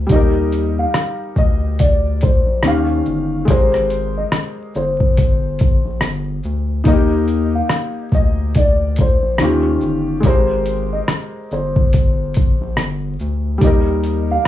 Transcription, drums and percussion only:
0.09 kick, closed hi-hat
0.52 closed hi-hat, shaker
0.94 cross-stick, closed hi-hat
1.36 kick, shaker
1.79 kick, closed hi-hat
2.21 kick, closed hi-hat, shaker
2.62 cross-stick, closed hi-hat
3.05 shaker
3.48 kick, closed hi-hat
3.74 cross-stick
3.90 closed hi-hat, shaker
4.32 cross-stick, closed hi-hat
4.75 shaker
5.00 kick
5.17 kick, closed hi-hat
5.59 kick, closed hi-hat, shaker
6.01 cross-stick, closed hi-hat
6.43 shaker
6.85 kick, closed hi-hat
7.28 closed hi-hat, shaker
7.69 cross-stick, closed hi-hat
8.12 kick, shaker
8.55 kick, closed hi-hat
8.96 kick, closed hi-hat, shaker
9.38 cross-stick, closed hi-hat
9.81 shaker
10.23 kick, closed hi-hat
10.66 closed hi-hat, shaker
11.08 cross-stick, closed hi-hat
11.51 shaker
11.76 kick
11.93 kick, closed hi-hat
12.34 kick, closed hi-hat, shaker
12.77 cross-stick, closed hi-hat
13.20 shaker
13.61 kick, closed hi-hat
14.04 closed hi-hat, shaker

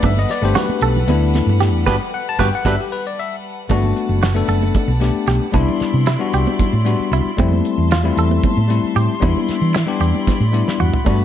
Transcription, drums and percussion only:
0.02 kick, closed hi-hat, muted conga, low conga
0.17 high conga
0.29 snare, closed hi-hat
0.55 snare, closed hi-hat, low conga
0.70 muted conga, low conga
0.81 closed hi-hat
0.96 low conga
1.08 closed hi-hat, high conga
1.34 snare, closed hi-hat, muted conga, low conga
1.49 low conga
1.60 snare, closed hi-hat, low conga
1.87 kick, snare, muted conga
2.39 kick, snare, muted conga
2.65 kick, snare, muted conga
3.69 kick, closed hi-hat, muted conga
3.84 high conga, low conga
3.97 closed hi-hat
4.22 snare, closed hi-hat
4.49 closed hi-hat
4.63 muted conga
4.74 kick, closed hi-hat, high conga, low conga
4.89 low conga
5.01 snare, closed hi-hat
5.27 snare, closed hi-hat
5.42 low conga
5.54 kick, closed hi-hat, muted conga
5.69 high conga, low conga
5.80 snare, closed hi-hat
6.06 snare, closed hi-hat
6.33 closed hi-hat
6.47 muted conga
6.59 kick, closed hi-hat, high conga, low conga
6.86 closed hi-hat
7.00 low conga
7.13 closed hi-hat, low conga
7.26 low conga
7.38 kick, closed hi-hat, muted conga
7.52 high conga, low conga
7.65 closed hi-hat
7.91 snare, closed hi-hat
8.18 closed hi-hat
8.31 muted conga
8.43 kick, closed hi-hat, high conga, low conga
8.58 low conga
8.70 closed hi-hat
8.84 low conga
8.96 closed hi-hat, low conga
9.10 low conga
9.22 kick, closed hi-hat, muted conga
9.37 high conga, low conga
9.49 snare, closed hi-hat, low conga
9.75 snare, closed hi-hat, low conga
10.01 closed hi-hat
10.15 muted conga, low conga
10.27 kick, snare, closed hi-hat, high conga, low conga
10.54 closed hi-hat
10.68 snare
10.80 mid tom
10.94 floor tom
11.06 kick, closed hi-hat, muted conga
11.19 high conga

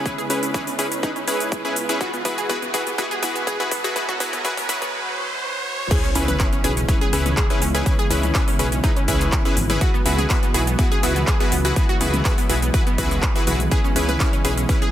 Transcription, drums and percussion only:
0.06 kick, closed hi-hat, cabasa
0.18 closed hi-hat, cabasa
0.30 open hi-hat, cabasa
0.43 closed hi-hat, cabasa
0.54 kick, closed hi-hat, cabasa
0.67 open hi-hat, cabasa
0.79 open hi-hat, cabasa
0.92 closed hi-hat, cabasa
1.03 kick, closed hi-hat, cabasa
1.16 closed hi-hat, cabasa
1.28 open hi-hat, cabasa
1.40 closed hi-hat, cabasa
1.52 kick, closed hi-hat, cabasa
1.65 closed hi-hat, cabasa
1.76 open hi-hat, cabasa
1.89 closed hi-hat, cabasa
2.01 kick, closed hi-hat, cabasa
2.14 closed hi-hat, cabasa
2.25 kick, open hi-hat, cabasa
2.38 closed hi-hat, cabasa
2.49 kick, closed hi-hat, cabasa
2.62 closed hi-hat, cabasa
2.74 kick, open hi-hat, cabasa
2.87 closed hi-hat, cabasa
2.98 kick, closed hi-hat, cabasa
3.11 closed hi-hat, cabasa
3.23 kick, open hi-hat, cabasa
3.36 closed hi-hat, cabasa
3.47 kick, closed hi-hat, cabasa
3.60 closed hi-hat, cabasa
3.71 kick, open hi-hat, cabasa
3.84 closed hi-hat, cabasa
3.96 kick, closed hi-hat, cabasa
4.09 kick, closed hi-hat, cabasa
4.20 kick, open hi-hat, cabasa
4.33 kick, closed hi-hat, cabasa
4.45 kick, closed hi-hat, cabasa
4.57 kick, open hi-hat, cabasa
4.69 kick, open hi-hat, cabasa
4.82 kick, closed hi-hat, cabasa
5.91 kick, closed hi-hat, crash, cabasa
6.04 cabasa
6.15 open hi-hat, high conga, cabasa
6.28 closed hi-hat, mid tom, high conga, cabasa
6.40 kick, clap, closed hi-hat, cabasa
6.53 closed hi-hat, cabasa
6.64 open hi-hat, cabasa
6.77 closed hi-hat, cabasa
6.89 kick, closed hi-hat, cabasa
7.01 closed hi-hat, high conga, cabasa
7.13 open hi-hat, cabasa
7.26 closed hi-hat, mid tom, high conga, cabasa
7.37 kick, clap, closed hi-hat, cabasa
7.50 closed hi-hat, cabasa
7.62 open hi-hat, cabasa
7.75 closed hi-hat, cabasa
7.86 kick, closed hi-hat, cabasa
7.99 closed hi-hat, cabasa
8.11 open hi-hat, high conga, cabasa
8.23 closed hi-hat, mid tom, high conga, cabasa
8.35 kick, clap, closed hi-hat, cabasa
8.48 open hi-hat, cabasa
8.59 open hi-hat, cabasa
8.72 closed hi-hat, cabasa
8.84 kick, closed hi-hat, cabasa
8.96 closed hi-hat, cabasa
9.08 kick, open hi-hat, cabasa
9.21 clap, closed hi-hat, cabasa
9.32 kick, clap, closed hi-hat, cabasa
9.45 closed hi-hat, cabasa
9.57 open hi-hat, mid tom, cabasa
9.70 closed hi-hat, mid tom, cabasa
9.81 kick, closed hi-hat, cabasa
9.95 cabasa
10.06 open hi-hat, high conga, cabasa
10.18 closed hi-hat, mid tom, high conga, cabasa
10.30 kick, clap, closed hi-hat, cabasa
10.43 closed hi-hat, cabasa
10.54 open hi-hat, cabasa
10.67 closed hi-hat, cabasa
10.79 kick, closed hi-hat, cabasa
10.92 closed hi-hat, high conga, cabasa
11.03 open hi-hat, cabasa
11.16 closed hi-hat, mid tom, high conga, cabasa
11.27 kick, clap, closed hi-hat, cabasa
11.40 closed hi-hat, cabasa
11.52 open hi-hat, cabasa
11.65 closed hi-hat, cabasa
11.76 kick, closed hi-hat, cabasa
11.89 closed hi-hat, cabasa
12.01 open hi-hat, high conga, cabasa
12.14 closed hi-hat, mid tom, high conga, cabasa
12.25 kick, clap, closed hi-hat, cabasa
12.38 open hi-hat, cabasa
12.50 open hi-hat, cabasa
12.62 closed hi-hat, cabasa
12.74 kick, closed hi-hat, cabasa
12.87 closed hi-hat, cabasa
12.98 kick, open hi-hat, cabasa
13.11 clap, closed hi-hat, cabasa
13.23 kick, clap, closed hi-hat, cabasa
13.36 closed hi-hat, cabasa
13.47 open hi-hat, mid tom, cabasa
13.60 closed hi-hat, mid tom, cabasa
13.71 kick, closed hi-hat, cabasa
13.85 cabasa
13.96 open hi-hat, high conga, cabasa
14.09 closed hi-hat, mid tom, high conga, cabasa
14.20 kick, clap, closed hi-hat, cabasa
14.33 closed hi-hat, cabasa
14.45 open hi-hat, cabasa
14.57 closed hi-hat, cabasa
14.69 kick, closed hi-hat, cabasa
14.82 closed hi-hat, high conga, cabasa

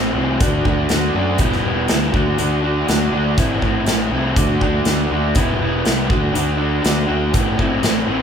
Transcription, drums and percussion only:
0.40 kick, closed hi-hat
0.65 kick
0.89 snare, closed hi-hat
1.38 kick, closed hi-hat
1.52 snare
1.88 snare, closed hi-hat
2.14 kick
2.38 closed hi-hat
2.88 snare, closed hi-hat
3.38 kick, closed hi-hat
3.62 kick
3.86 snare, closed hi-hat
4.36 kick, closed hi-hat
4.61 kick
4.85 snare, closed hi-hat
5.35 kick, closed hi-hat
5.85 snare, closed hi-hat
6.10 kick
6.35 closed hi-hat
6.84 snare, closed hi-hat
7.34 kick, closed hi-hat
7.59 kick
7.83 snare, closed hi-hat

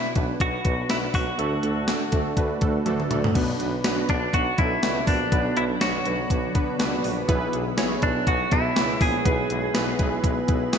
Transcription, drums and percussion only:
0.15 kick, closed hi-hat
0.40 kick, closed hi-hat
0.65 kick, closed hi-hat
0.89 snare, closed hi-hat
1.14 kick, open hi-hat
1.39 closed hi-hat
1.63 closed hi-hat
1.88 snare, closed hi-hat
2.12 kick, closed hi-hat
2.37 kick, closed hi-hat
2.61 kick, closed hi-hat
2.86 closed hi-hat, high tom
3.00 mid tom
3.11 closed hi-hat, mid tom
3.24 floor tom
3.35 kick, closed hi-hat, crash
3.60 closed hi-hat
3.84 snare, closed hi-hat
4.09 kick, closed hi-hat
4.33 kick, closed hi-hat
4.58 kick, closed hi-hat
4.83 snare, closed hi-hat
5.07 kick, open hi-hat
5.32 kick, closed hi-hat
5.57 closed hi-hat
5.81 snare, closed hi-hat
6.06 closed hi-hat
6.30 kick, closed hi-hat
6.55 kick, closed hi-hat
6.80 snare, closed hi-hat
7.04 open hi-hat
7.29 kick, closed hi-hat
7.53 closed hi-hat
7.78 snare, closed hi-hat
8.02 kick, closed hi-hat
8.27 kick, closed hi-hat
8.51 kick, closed hi-hat
8.76 snare, closed hi-hat
9.01 kick, open hi-hat
9.25 kick, closed hi-hat
9.50 closed hi-hat
9.75 snare, closed hi-hat
9.99 kick, closed hi-hat
10.24 kick, closed hi-hat
10.48 kick, closed hi-hat
10.73 snare, closed hi-hat

